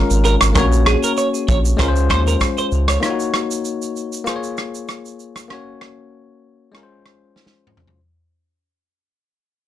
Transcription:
Already playing: tine electric piano G#3 C#4 F4 A#4
0.11 sub bass G#1, shaker
0.25 clean electric guitar A#4, shaker
0.41 sub bass G#1, cross-stick, shaker
0.53 sub bass A#1, tine electric piano A3 C#4 F#4, clean electric guitar A#4, kick, cross-stick, shaker
0.58 tine electric piano A#3 C#5
0.72 shaker
0.86 clean electric guitar G#4, cross-stick, shaker
1.03 clean electric guitar A#4, shaker
1.17 clean electric guitar C#5, shaker
1.34 shaker
1.49 sub bass A#1, clean electric guitar C#5, kick, shaker
1.65 shaker
1.77 sub bass C#2, tine electric piano G#3 C#4 F4, clean electric guitar C5, kick, cross-stick, shaker
1.82 tine electric piano A#4
1.88 tine electric piano C5
1.96 shaker
2.10 sub bass D#2, clean electric guitar C5, kick, cross-stick, shaker
2.27 clean electric guitar A#4, shaker
2.41 kick, cross-stick, shaker
2.58 clean electric guitar C5, shaker
2.72 sub bass C#2, shaker
2.88 clean electric guitar C#5, cross-stick, shaker
3.00 tine electric piano A#3 D#4 F4, cross-stick, shaker
3.05 tine electric piano C#5
3.10 tine electric piano F#4
3.20 shaker
3.34 cross-stick, shaker
3.51 shaker
3.65 shaker
3.82 shaker
3.96 shaker
4.13 shaker
4.24 tine electric piano A#3 F4 G#4, cross-stick, shaker
4.29 tine electric piano C5
4.36 tine electric piano C#5
4.43 shaker
4.58 cross-stick, shaker
4.75 shaker
4.88 cross-stick, shaker
5.06 shaker
5.20 shaker
5.36 cross-stick, shaker
5.48 tine electric piano A#3 C#4 F#4, cross-stick
5.53 tine electric piano C#5
5.81 cross-stick
6.72 tine electric piano G#3 C#4 F4, cross-stick
6.77 tine electric piano A#4
6.83 tine electric piano C5
7.06 cross-stick
7.36 snare
7.46 snare
7.67 mid tom
7.77 floor tom
7.88 floor tom

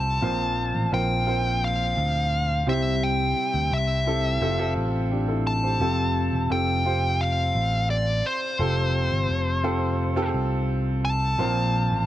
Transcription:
Already playing: picked electric bass C2, grand piano F4 G4 A4 C5, lead electric guitar A5
0.21 picked electric bass A#1, grand piano A#2 F3 C4 F4 A#4 C5
0.75 picked electric bass A1
0.91 picked electric bass A#1, grand piano C4 F4 A#4 C5, lead electric guitar G5
1.26 grand piano C4 F4 A#4 C5
1.64 lead electric guitar F5
1.97 picked electric bass D2
2.66 picked electric bass C2, grand piano C3 G3 C4 E4 G4 C5, lead electric guitar E5
3.03 lead electric guitar G5
3.54 picked electric bass D2
3.71 picked electric bass C2, lead electric guitar E5
4.06 grand piano C4 E4 G4 A4
4.41 picked electric bass F1, grand piano C3 C4 F4 G4 A4
4.59 grand piano C4 F4 G4 A4
4.76 picked electric bass A1
5.11 grand piano D4 G4
5.28 grand piano E4 A4
5.47 lead electric guitar A5
5.63 grand piano G4 C5
5.80 picked electric bass F1, grand piano C3 C4 F4 G4 A4
6.33 picked electric bass E1
6.50 picked electric bass F1, grand piano C4 F4 G4 A4, lead electric guitar G5
6.85 grand piano C4 F4 G4 C5
7.21 lead electric guitar F5
7.55 picked electric bass A1
7.90 lead electric guitar D5
8.26 lead electric guitar C5
8.59 picked electric bass F1, grand piano C3 C4 F4 G4 A4
9.12 picked electric bass G1
9.29 picked electric bass F1
9.63 grand piano C4 F4 G4 A4
10.16 grand piano C4 F4 G4 A4
10.34 picked electric bass C2
11.05 lead electric guitar A5
11.38 picked electric bass A#1, grand piano A#2 F3 C4 F4 A#4 C5
11.91 picked electric bass A1

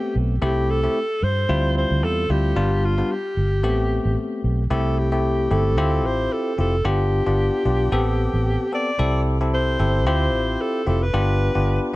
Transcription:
Already playing: tine electric piano A3 B3 C4 G4, alto saxophone G4
0.15 fingered electric bass B1
0.42 fingered electric bass C2, tine electric piano A3 C4 E4 G4, alto saxophone G4
0.70 alto saxophone A4
0.83 tine electric piano A3 C4 E4 G4
1.22 fingered electric bass G2, alto saxophone C5
1.49 fingered electric bass D2, tine electric piano G3 C4 E4 F4
1.77 alto saxophone C5
1.90 fingered electric bass D2
2.03 fingered electric bass E2, alto saxophone A4
2.29 fingered electric bass D2, tine electric piano G3 C4 E4 F4, alto saxophone G4
2.56 fingered electric bass G1, tine electric piano G3 B3 D4 F4
2.85 alto saxophone F4
2.98 tine electric piano G3 B3 D4 F4
3.12 alto saxophone G4
3.37 fingered electric bass G1
3.63 fingered electric bass A1, tine electric piano A3 B3 C4 G4
4.05 fingered electric bass A1
4.44 fingered electric bass B1
4.70 fingered electric bass C2, tine electric piano A3 C4 E4 G4, alto saxophone A4
4.99 alto saxophone G4
5.12 tine electric piano A3 C4 E4 G4
5.51 fingered electric bass G1, tine electric piano A3 C4 E4 G4, alto saxophone A4
5.77 fingered electric bass D2, tine electric piano C4 E4 F4 G4
6.04 fingered electric bass A1, alto saxophone C5
6.33 alto saxophone A4
6.58 fingered electric bass F1, tine electric piano C4 E4 F4 G4, alto saxophone A4
6.85 fingered electric bass G1, tine electric piano B3 D4 F4 G4, alto saxophone G4
7.26 fingered electric bass G1, tine electric piano B3 D4 F4 G4
7.65 fingered electric bass B1, tine electric piano B3 D4 F4 G4
7.92 fingered electric bass A1, tine electric piano B3 C4 G4 A4
8.33 fingered electric bass A1
8.72 tine electric piano B3 C4 G4 A4, alto saxophone D5
8.99 fingered electric bass C2, tine electric piano C4 E4 G4 A4
9.41 tine electric piano C4 E4 G4 A4
9.54 alto saxophone C5
9.79 fingered electric bass G1, tine electric piano C4 E4 G4 A4
10.06 fingered electric bass D2, tine electric piano C4 E4 F4 G4, alto saxophone C5
10.33 fingered electric bass A1
10.61 alto saxophone A4
10.86 fingered electric bass F1, tine electric piano C4 E4 F4 G4, alto saxophone A4
11.03 alto saxophone B4
11.13 fingered electric bass G1, tine electric piano B3 D4 F4 G4
11.55 fingered electric bass G1, tine electric piano B3 D4 F4 G4

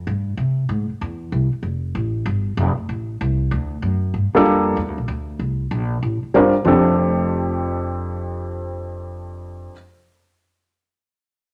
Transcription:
0.07 upright bass G2
0.37 upright bass C3
0.69 upright bass G#2
0.90 muted upright bass stroke
1.01 upright bass E2
1.32 upright bass C2
1.53 muted upright bass stroke
1.63 upright bass F1
1.95 upright bass A1
2.26 upright bass G1
2.57 upright bass F1
2.78 muted upright bass stroke
2.89 upright bass A1
3.21 upright bass C2
3.51 upright bass D2
3.82 upright bass F#2
4.14 upright bass G2
4.33 grand piano G3 A#3 D4 F4 A4, muted upright bass stroke
4.45 upright bass F2
4.77 upright bass E2
4.88 upright bass D2
4.98 upright bass A#1
5.08 upright bass D2
5.39 upright bass C2
5.71 upright bass A#1
6.03 upright bass A1
6.23 muted upright bass stroke
6.34 upright bass G1, grand piano G3 C4 D4 F4 A#4
6.65 upright bass F1, grand piano F2 F3 D4 G4 A4

